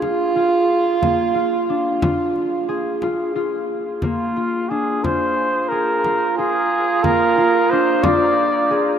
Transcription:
Already playing: harp A#3 D4 G#4, french horn F4
0.02 harp F4, frame drum
0.36 harp F4
1.02 harp A#3, frame drum
1.35 harp F4
1.70 harp D4
2.02 harp F4, frame drum
2.36 frame drum
2.69 harp G#4
3.02 harp F4, frame drum
3.36 harp F4
4.02 harp A#3, flugelhorn F4, frame drum
4.37 harp F4, frame drum
4.69 harp D4, flugelhorn G#4
5.03 french horn F4, harp F4, flugelhorn C5, frame drum
5.68 harp G#4, flugelhorn A#4
6.04 harp F4, frame drum
6.37 harp F4, flugelhorn G#4
7.03 harp A#3, flugelhorn A#4, frame drum
7.38 harp F4
7.70 harp D4, flugelhorn C5
8.03 harp F4, flugelhorn D5, frame drum
8.71 harp G#4

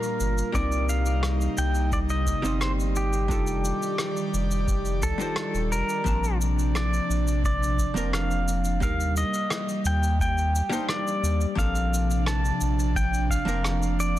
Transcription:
Already playing: analog synth pad A#2 A#3 F4, hollow-body jazz guitar G3 A#3 D4 F4 A#4, pedal steel guitar A#4
0.03 cabasa
0.20 sub bass G1, cabasa
0.38 cabasa
0.52 sub bass C2, analog synth pad C3 D#4, hollow-body jazz guitar G3 A#3 C4 D#4 A#4, pedal steel guitar D5, kick, cabasa
0.72 cabasa
0.89 pedal steel guitar F5, cabasa
1.06 cabasa
1.23 cross-stick, cabasa
1.41 cabasa
1.58 sub bass C2, pedal steel guitar G5, cabasa
1.75 cabasa
1.92 pedal steel guitar D5, kick, cabasa
2.09 pedal steel guitar D#5, cabasa
2.26 kick, cabasa
2.42 sub bass G1, hollow-body jazz guitar G3 A#3 C4 D#4 C5, cabasa
2.61 pedal steel guitar C5, cross-stick, cabasa
2.80 cabasa
2.96 pedal steel guitar G4, cabasa
3.13 cabasa
3.28 sub bass F1, analog synth pad D#3 G3 G4 D5, hollow-body jazz guitar G3 D4 D#4 F4 A4, kick, cabasa
3.47 cabasa
3.65 cabasa
3.82 cabasa
3.98 cross-stick, cabasa
4.17 cabasa
4.34 sub bass F1, cabasa
4.51 cabasa
4.68 kick, cabasa
4.85 cabasa
5.02 sub bass C2, pedal steel guitar A4, kick, cabasa
5.18 hollow-body jazz guitar G3 D4 D#4 F4 C5, cabasa
5.36 cross-stick, cabasa
5.54 sub bass D#1, cabasa
5.71 sub bass F1, pedal steel guitar A#4, cabasa
5.89 cabasa
6.04 sub bass A#1, analog synth pad C3 D4, hollow-body jazz guitar F3 A#3 C4 D4 A5, kick, cabasa
6.24 cabasa
6.41 cabasa
6.59 cabasa
6.75 pedal steel guitar D5, cross-stick, cabasa
6.94 cabasa
7.09 sub bass A#1, cabasa
7.28 cabasa
7.44 pedal steel guitar D5, kick, cabasa
7.63 cabasa
7.78 kick, cabasa
7.94 sub bass F1, hollow-body jazz guitar F3 A#3 C4 D4 A#4, cabasa
8.13 pedal steel guitar F5, cross-stick, cabasa
8.31 cabasa
8.48 cabasa
8.64 cabasa
8.80 sub bass D#2, hollow-body jazz guitar G3 A#3 D#4 A#4, analog synth pad G3, pedal steel guitar F5, kick, cabasa
9.00 cabasa
9.17 pedal steel guitar D#5, cabasa
9.34 cabasa
9.50 cross-stick, cabasa
9.69 cabasa
9.85 sub bass D#2, pedal steel guitar G5, cabasa
10.03 cabasa
10.19 pedal steel guitar G5, kick, cabasa
10.38 cabasa
10.55 cabasa
10.69 hollow-body jazz guitar G3 A#3 D4 D#4 C5, cabasa
10.89 pedal steel guitar D5, cross-stick, cabasa
11.08 cabasa
11.23 sub bass D#2, cabasa
11.41 cabasa
11.55 sub bass A#1, analog synth pad C3 D4, hollow-body jazz guitar F3 A#3 C4 D4 A4, pedal steel guitar F5, kick, cabasa
11.75 cabasa
11.94 cabasa
12.11 cabasa
12.26 pedal steel guitar A5, cross-stick, cabasa
12.45 cabasa
12.61 sub bass A#1, cabasa
12.79 cabasa
12.95 pedal steel guitar G5, kick, cabasa
13.14 cabasa
13.30 pedal steel guitar F5, kick, cabasa
13.45 sub bass F1, hollow-body jazz guitar F3 A#3 C4 D4 A#4, cabasa
13.64 cross-stick, cabasa
13.83 cabasa
14.00 pedal steel guitar D5, cabasa

